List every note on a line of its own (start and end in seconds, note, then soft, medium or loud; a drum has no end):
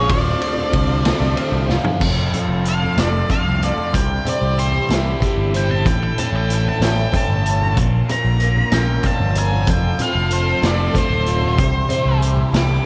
0.00 1.38 F4 medium
0.00 1.98 F4 medium
0.09 0.34 D1 loud
0.09 1.70 D2 medium
0.09 2.00 C4 medium
0.09 2.00 D4 medium
0.09 2.00 A4 medium
0.09 2.00 C5 medium
0.09 1.34 D5 medium
0.09 kick loud
0.09 ride loud
0.09 high conga medium
0.42 ride medium
0.42 low conga soft
0.58 low conga medium
0.73 1.11 C2 medium
0.73 2.01 D3 medium
0.73 kick medium
0.73 ride medium
1.04 2.01 A3 medium
1.04 snare loud
1.04 ride medium
1.04 high conga medium
1.04 low conga soft
1.20 1.33 C2 medium
1.20 low conga medium
1.37 2.02 C4 medium
1.37 ride medium
1.37 high conga medium
1.52 1.78 C2 medium
1.52 high conga medium
1.69 2.02 F4 medium
1.69 snare medium
1.69 low conga medium
1.84 floor tom medium
1.84 low conga medium
2.00 2.26 F1 medium
2.00 3.61 F2 medium
2.00 4.53 A2 medium
2.00 3.92 F3 medium
2.00 3.92 A3 medium
2.00 5.81 C4 medium
2.00 3.92 F4 medium
2.00 3.92 A4 medium
2.00 kick loud
2.00 crash loud
2.00 high conga medium
2.00 low conga soft
2.17 low conga soft
2.33 3.61 F4 medium
2.33 closed hi-hat medium
2.33 low conga medium
2.49 2.86 F1 medium
2.63 3.25 D3 medium
2.63 3.27 C4 medium
2.63 closed hi-hat medium
2.69 2.98 F5 loud
2.83 low conga medium
2.96 3.22 F1 medium
2.96 3.93 A3 medium
2.96 3.30 D5 medium
2.96 snare loud
2.96 closed hi-hat medium
2.96 high conga medium
3.25 5.15 D3 medium
3.25 3.93 C4 medium
3.30 3.61 F5 medium
3.30 kick medium
3.30 closed hi-hat medium
3.30 low conga medium
3.45 3.70 C2 medium
3.62 3.94 F4 medium
3.62 3.94 D5 medium
3.62 closed hi-hat medium
3.78 low conga medium
3.90 4.18 C2 loud
3.90 6.41 D2 medium
3.90 5.53 C3 medium
3.90 5.83 E3 medium
3.90 5.83 G3 medium
3.90 7.73 E4 medium
3.90 5.83 G4 medium
3.94 4.25 G5 medium
3.94 kick loud
3.94 closed hi-hat loud
3.94 high conga medium
3.94 low conga soft
4.09 low conga soft
4.25 5.53 C5 medium
4.25 closed hi-hat medium
4.25 low conga medium
4.29 4.58 D5 medium
4.42 4.79 C2 medium
4.53 9.49 A2 medium
4.53 low conga soft
4.59 5.21 G4 medium
4.59 4.89 C5 medium
4.59 closed hi-hat medium
4.72 low conga medium
4.89 5.14 C2 medium
4.89 5.86 E4 medium
4.89 snare loud
4.89 closed hi-hat medium
4.89 high conga medium
5.15 5.78 D3 medium
5.20 5.86 G4 medium
5.20 kick medium
5.20 closed hi-hat medium
5.20 low conga medium
5.38 5.86 G1 medium
5.54 5.86 C5 medium
5.54 5.71 G5 medium
5.54 closed hi-hat medium
5.69 5.86 A5 medium
5.69 low conga medium
5.78 7.65 D3 medium
5.84 6.10 A1 loud
5.84 7.45 A2 medium
5.84 7.74 E3 medium
5.84 7.75 A3 medium
5.84 9.64 C#4 medium
5.84 7.74 A4 medium
5.84 6.02 G5 medium
5.84 kick loud
5.84 closed hi-hat medium
5.84 high conga medium
5.84 low conga soft
6.03 6.19 G5 medium
6.18 7.44 A4 medium
6.18 6.34 A5 medium
6.18 closed hi-hat medium
6.18 low conga medium
6.33 6.70 A1 medium
6.33 6.50 G5 medium
6.41 8.85 D2 medium
6.50 7.11 E4 medium
6.50 closed hi-hat medium
6.54 6.67 G5 medium
6.66 6.83 A5 medium
6.66 low conga medium
6.80 7.05 A1 medium
6.80 7.76 C#4 medium
6.80 7.13 G5 medium
6.80 snare loud
6.80 closed hi-hat medium
6.80 high conga medium
7.12 7.76 E4 medium
7.12 kick medium
7.12 closed hi-hat medium
7.12 low conga medium
7.17 7.77 A5 loud
7.28 7.77 G1 medium
7.45 7.77 A4 medium
7.45 closed hi-hat medium
7.61 low conga medium
7.65 8.25 D3 medium
7.76 8.01 A#1 loud
7.76 9.36 A#2 medium
7.76 11.54 F3 medium
7.76 9.65 A#3 medium
7.76 11.54 F4 medium
7.76 9.66 A#4 medium
7.76 kick loud
7.76 closed hi-hat medium
7.76 high conga medium
7.76 low conga soft
8.08 9.35 A#4 medium
8.08 8.72 A#5 loud
8.08 closed hi-hat medium
8.08 low conga medium
8.25 8.62 A#1 medium
8.25 10.12 D3 medium
8.40 9.02 F4 medium
8.40 closed hi-hat medium
8.57 low conga medium
8.72 8.97 A#1 medium
8.72 9.68 C#4 medium
8.72 9.04 G5 medium
8.72 snare loud
8.72 closed hi-hat medium
8.72 high conga medium
8.86 11.33 D2 medium
9.03 9.67 F4 medium
9.03 9.36 A5 medium
9.03 kick medium
9.03 closed hi-hat medium
9.03 low conga medium
9.20 9.68 G1 medium
9.20 high conga medium
9.35 9.68 A#4 medium
9.35 9.68 G#5 medium
9.35 closed hi-hat medium
9.35 low conga medium
9.49 11.96 A2 medium
9.49 low conga medium
9.66 9.92 F1 loud
9.66 11.27 F2 medium
9.66 11.56 A3 medium
9.66 12.86 C4 medium
9.66 11.55 A4 medium
9.66 kick loud
9.66 closed hi-hat loud
9.66 high conga medium
9.66 low conga soft
9.70 10.00 G5 medium
9.83 low conga soft
9.99 11.26 F4 medium
9.99 10.31 F5 medium
9.99 closed hi-hat medium
9.99 low conga medium
10.12 10.52 F1 medium
10.12 10.74 D3 medium
10.30 10.94 C4 medium
10.30 10.63 C5 medium
10.30 closed hi-hat medium
10.30 low conga soft
10.62 10.87 F1 medium
10.62 11.58 A3 medium
10.62 snare loud
10.62 closed hi-hat medium
10.62 high conga medium
10.67 10.96 D5 medium
10.74 12.61 D3 medium
10.94 11.58 C4 medium
10.94 kick medium
10.94 closed hi-hat medium
10.94 low conga medium
10.98 12.20 C5 loud
11.10 11.58 D1 medium
11.26 11.58 F4 medium
11.26 closed hi-hat medium
11.34 12.86 D2 medium
11.41 low conga medium
11.57 11.83 C2 loud
11.57 12.86 C3 medium
11.57 12.86 E3 medium
11.57 12.86 G3 medium
11.57 12.86 E4 medium
11.57 12.86 G4 medium
11.57 kick loud
11.57 closed hi-hat medium
11.57 high conga medium
11.57 low conga soft
11.73 low conga soft
11.89 12.86 C5 medium
11.89 closed hi-hat medium
11.89 low conga loud
11.97 12.86 A2 medium
12.05 12.42 C2 medium
12.22 12.84 G4 medium
12.22 closed hi-hat medium
12.37 low conga medium
12.53 12.78 C2 medium
12.53 12.86 E4 medium
12.53 12.86 D6 medium
12.53 snare loud
12.53 closed hi-hat medium
12.53 high conga loud
12.61 12.86 D3 medium